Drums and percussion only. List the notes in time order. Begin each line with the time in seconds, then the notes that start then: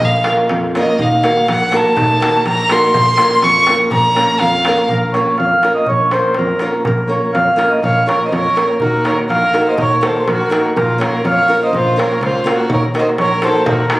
0.24 darbuka tek
0.49 darbuka tek
0.75 darbuka tek
0.87 darbuka tek
0.99 darbuka dum
1.12 darbuka tek
1.24 darbuka tek
1.48 darbuka tek
1.72 darbuka tek
1.85 darbuka tek
1.97 darbuka dum
2.10 darbuka tek
2.22 darbuka tek
2.46 darbuka tek
2.69 darbuka tek
2.83 darbuka tek
2.94 darbuka dum
3.07 darbuka tek
3.17 darbuka tek
3.42 darbuka tek
3.67 darbuka tek
3.79 darbuka tek
3.91 darbuka dum
4.04 darbuka tek
4.16 darbuka tek
4.28 darbuka tek
4.39 darbuka tek
4.65 darbuka tek
4.77 darbuka tek
4.89 darbuka dum
5.02 darbuka tek
5.14 darbuka tek
5.26 darbuka tek
5.38 darbuka tek
5.63 darbuka tek
5.75 darbuka tek
5.86 darbuka dum
5.99 darbuka tek
6.11 darbuka tek
6.24 darbuka tek
6.34 darbuka tek
6.59 darbuka tek
6.73 darbuka tek
6.85 darbuka dum
6.98 darbuka tek
7.22 darbuka tek
7.35 darbuka tek
7.59 darbuka tek
7.72 darbuka tek
7.84 darbuka dum
7.97 darbuka tek
8.09 darbuka tek
8.33 darbuka tek
8.57 darbuka tek
8.69 darbuka tek
8.80 darbuka dum
8.94 darbuka tek
9.05 darbuka tek
9.30 darbuka tek
9.54 darbuka tek
9.66 darbuka tek
9.78 darbuka dum
9.91 darbuka tek
10.03 darbuka tek
10.15 darbuka tek
10.28 darbuka tek
10.52 darbuka tek
10.66 darbuka tek
10.77 darbuka dum
10.90 darbuka tek
11.01 darbuka tek
11.14 darbuka tek
11.25 darbuka tek
11.62 darbuka tek
11.74 darbuka dum
11.99 darbuka tek
12.23 darbuka tek
12.47 darbuka tek
12.58 darbuka tek
12.70 darbuka dum
12.95 darbuka tek
13.18 darbuka tek
13.42 darbuka tek
13.55 darbuka tek
13.66 darbuka dum
13.90 darbuka tek